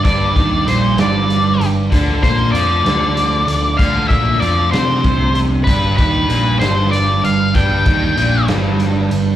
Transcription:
<<
  \new Staff \with { instrumentName = "Lead electric guitar" } { \time 6/8 \key g \dorian \tempo 4. = 64 d''4 c''8 d''4 r8 | r8 c''8 d''2 | f''8 e''8 d''8 c''4 r8 | b'8 b'4 c''8 d''8 f''8 |
g''4. r4. | }
  \new Staff \with { instrumentName = "Distorted electric guitar" } { \time 6/8 \key g \dorian <g d' g' d''>2. | <f a d' a' d''>2. | <f a d' a' d''>2. | <g d' g' d''>2. |
<g d' g' d''>2. | }
  \new Staff \with { instrumentName = "Overdriven electric guitar" } { \clef bass \time 6/8 \key g \dorian g,8 ees8 bes,8 g,4 g,8 | d8 bes8 f8 d4 d8 | d8 bes8 f8 c'8 c4 | g,8 ees8 bes,8 g,4 g,8 |
g,8 ees8 bes,8 g,4 g,8 | }
  \new Staff \with { instrumentName = "Picked electric bass" } { \clef bass \time 6/8 \key g \dorian g,,8 ees,8 bes,,8 g,,4 g,,8 | d,8 bes,8 f,8 d,4 d,8 | d,8 bes,8 f,8 c8 c,4 | g,,8 ees,8 bes,,8 g,,4 g,,8 |
g,,8 ees,8 bes,,8 g,,4 g,,8 | }
  \new DrumStaff \with { instrumentName = "Drums" } \drummode { \time 6/8 <hh bd>8 <hh bd>8 hh8 <hh sn>8 hh8 hh8 | <hh bd>8 <hh bd>8 hh8 <hh sn>8 hh8 hh8 | <hh bd>8 <hh bd>8 hh8 <hh sn>8 <hh bd>8 hh8 | <hh bd>8 <hh bd>8 hh8 <hh sn>8 hh8 hh8 |
<hh bd>8 <hh bd>8 hh8 <hh sn>8 hh8 hh8 | }
>>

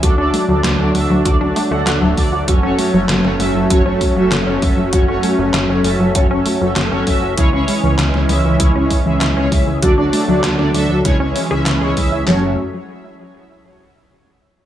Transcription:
<<
  \new Staff \with { instrumentName = "Analog polysynth" } { \time 4/4 \key fis \minor \tempo 4 = 98 <d' fis' a' d''>16 <d' fis' a' d''>8 <d' fis' a' d''>16 r16 <d' fis' a' d''>16 <d' fis' a' e''>8 <d' fis' a' d''>16 <d' fis' a' d''>8 <d' fis' a' fis''>8 <d' fis' a' e''>16 <d' fis' a' d''>8 | <cis' fis' a' cis''>16 <cis' fis' a' cis''>8 <cis' fis' a' cis''>16 r16 <cis' fis' a' cis''>16 <cis' fis' a' e''>8 <cis' fis' a' cis''>16 <cis' fis' a' cis''>8 <cis' fis' a' e''>8 <cis' fis' a' cis''>16 <cis' fis' a' e''>8 | <cis' fis' a' cis''>16 <cis' fis' a' cis''>8 <cis' fis' a' cis''>16 r16 <cis' fis' a' cis''>16 <cis' fis' a' e''>8 <cis' fis' a' cis''>16 <cis' fis' a' cis''>8 <cis' fis' a' e''>8 <cis' fis' a' cis''>16 <cis' fis' a' e''>8 | <cis' e' gis' cis''>16 <cis' e' gis' cis''>8 <cis' e' gis' cis''>16 r16 <cis' e' gis' cis''>16 <cis' e' gis' e''>8 <cis' e' gis' cis''>16 <cis' e' gis' cis''>8 <cis' e' gis' e''>8 <cis' e' gis' cis''>16 <cis' e' gis' e''>8 |
<d' fis' a' d''>16 <d' fis' a' d''>8 <d' fis' a' d''>16 r16 <d' fis' a' d''>16 <d' fis' a' e''>8 <cis' e' gis' cis''>16 <cis' e' gis' cis''>8 <cis' e' gis' e''>8 <cis' e' gis' cis''>16 <cis' e' gis' e''>8 | <cis' fis' a' cis''>8 r2. r8 | }
  \new Staff \with { instrumentName = "Synth arpeggio sound" } { \time 4/4 \key fis \minor fis'16 d'16 a16 fis16 fis'16 d'16 a16 fis16 fis'16 d'16 a16 a16 fis'16 fis16 a16 fis'16 | fis'16 cis'16 a16 fis16 fis'16 cis'16 a16 fis16 fis'16 cis'16 a16 fis16 fis'16 cis'16 a16 fis16 | fis'16 cis'16 a16 fis16 fis'16 cis'16 a16 fis16 fis'16 cis'16 a16 fis16 fis'16 cis'16 a16 fis16 | e'16 cis'16 gis16 e16 e'16 cis'16 gis16 e16 e'16 cis'16 gis16 e16 e'16 cis'16 gis16 e16 |
fis'16 d'16 a16 fis16 fis'16 d'16 a16 fis16 e'16 cis'16 cis'16 gis'16 e'16 gis'16 gis16 e'16 | fis8 r2. r8 | }
  \new Staff \with { instrumentName = "Supersaw synth" } { \time 4/4 \key fis \minor << { d'1 | cis'1~ | cis'1 | cis'1 |
d'2 cis'2 | <fis a cis'>8 r2. r8 | } \\ { <fis a>1~ | <fis a>1~ | <fis a>1 | <e gis>1 |
<fis a>2 <e gis>2 | r1 | } >> }
  \new Staff \with { instrumentName = "Analog synth bass" } { \clef bass \time 4/4 \key fis \minor d,16 d,16 r16 d,16 d,16 d,16 d,16 d,16 d,16 d,16 r16 d,16 d,16 d,,16 d,16 d,16 | fis,,16 fis,,16 r16 fis,,16 fis,,16 fis,,16 fis,,16 fis,,16 fis,,16 fis,,16 r16 fis,,16 fis,,16 fis,,16 fis,,16 fis,,16 | fis,,16 fis,,16 r16 fis,,16 fis,,16 fis,,16 fis,,16 fis,,16 fis,,16 fis,,16 r16 fis,,16 fis,,16 fis,,16 fis,,16 fis,,16 | cis,16 cis,16 r16 cis,16 cis,16 cis,16 cis,16 cis,16 cis,16 cis,16 r16 cis,16 cis,16 cis,16 cis,16 cis,16 |
d,16 d,16 r16 d,16 d,16 d,16 d,16 d,16 cis,16 cis,16 r16 cis,16 cis,16 cis,16 cis,16 cis,16 | fis,,8 r2. r8 | }
  \new DrumStaff \with { instrumentName = "Drums" } \drummode { \time 4/4 <hh bd>8 hho8 <hc hh sn>8 hho8 <hh bd>8 hho8 <hc hh sn>8 <hho bd>8 | <hh bd>8 hho8 <hc hh sn>16 sn16 hho8 <hh bd>8 <hho bd>8 <hc hh sn>8 <hho bd>8 | <hh bd>8 hho8 <hc hh sn>8 hho8 <hh bd>8 hho8 <hc hh sn>8 <hho bd>8 | <hh bd>8 hho8 <hc hh sn>16 sn16 hho8 <hh bd>8 <hho bd>8 <hc hh sn>8 <hho bd>8 |
<hh bd>8 hho8 <hc hh sn>16 sn16 hho8 <hh bd sn>8 hho8 <hc hh sn>8 <hho bd>8 | <hc sn>4 r4 r4 r4 | }
>>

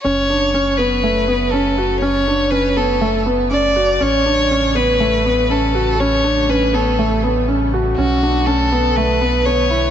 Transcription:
<<
  \new Staff \with { instrumentName = "Violin" } { \time 4/4 \key fis \phrygian \tempo 4 = 121 cis''4. b'4. a'4 | cis''4 b'8 a'4 r8 d''4 | cis''4. b'4. a'4 | cis''4 b'8 a'4 r4. |
fis'4 a'4 b'4 cis''4 | }
  \new Staff \with { instrumentName = "Felt piano" } { \time 4/4 \key fis \phrygian cis'8 d'8 cis'8 b8 a8 b8 cis'8 fis'8 | cis'8 d'8 cis'8 b8 a8 b8 cis'8 fis'8 | cis'8 d'8 cis'8 b8 a8 b8 cis'8 fis'8 | cis'8 d'8 cis'8 b8 a8 b8 cis'8 fis'8 |
cis'8 d'8 cis'8 b8 a8 b8 b8 e'8 | }
  \new Staff \with { instrumentName = "Analog synth pad" } { \clef bass \time 4/4 \key fis \phrygian << { <cis a>1~ | <cis a>1~ | <cis a>1~ | <cis a>1 |
<d b>1 | } \\ { fis1~ | fis1 | g1~ | g1 |
r1 | } >> }
  \new Staff \with { instrumentName = "Analog synth bass" } { \clef bass \time 4/4 \key fis \phrygian fis,,1~ | fis,,1 | a,,1~ | a,,1 |
b,,1 | }
>>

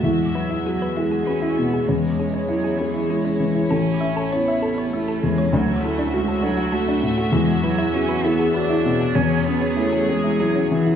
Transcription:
<<
  \new Staff \with { instrumentName = "Synth pluck" } { \time 3/4 \key e \mixolydian \tempo 4 = 98 e'16 r16 b'16 e'16 gis'16 b'16 e'16 gis'16 b'16 e'16 r16 gis'16 | cis'16 r16 gis'16 cis'16 e'16 gis'16 cis'16 e'16 gis'16 cis'16 r16 e'16 | a'16 r16 e''16 a'16 cis''16 e''16 a'16 cis''16 e''16 a'16 r16 cis''16 | d'16 r16 a'16 d'16 fis'16 a'16 d'16 fis'16 a'16 d'16 r16 fis'16 |
e'16 r16 b'16 e'16 gis'16 b'16 e'16 gis'16 b'16 e'16 r16 gis'16 | cis'16 r16 gis'16 cis'16 e'16 gis'16 cis'16 e'16 gis'16 cis'16 r16 e'16 | }
  \new Staff \with { instrumentName = "String section" } { \time 3/4 \key e \mixolydian << { <fis' e''>2. | <e' cis''>2.~ | <e' cis''>2. | <fis' e''>2.~ |
<fis' e''>2. | <gis' cis''>2. | } \\ { gis2.~ | gis2. | cis'2.~ | cis'2. |
fis2.~ | fis2. | } >> }
  \new Staff \with { instrumentName = "Felt piano" } { \time 3/4 \key e \mixolydian e,8 e'8 fis'8 gis'8 fis'8 b,8 | e,8 cis'8 e'8 gis'8 e'8 e8 | a,,8 cis'8 e'8 a'8 e'8 e,8 | d,8 e'8 fis'8 a'8 fis'8 a,8 |
e,8 e'8 fis'8 gis'8 fis'8 b,8 | e,8 cis'8 e'8 gis'8 e'8 e8 | }
  \new Staff \with { instrumentName = "Cello" } { \clef bass \time 3/4 \key e \mixolydian gis8 fis8 fis8 gis8 cis'8 b8 | gis4 fis8 e8 gis4 | cis'4 b4 a8 gis8 | fis8 a8 gis8 fis8 a4 |
gis8 fis8 cis'8 b8 d'4 | cis'8 b8 a8 gis8 fis8 e8 | }
>>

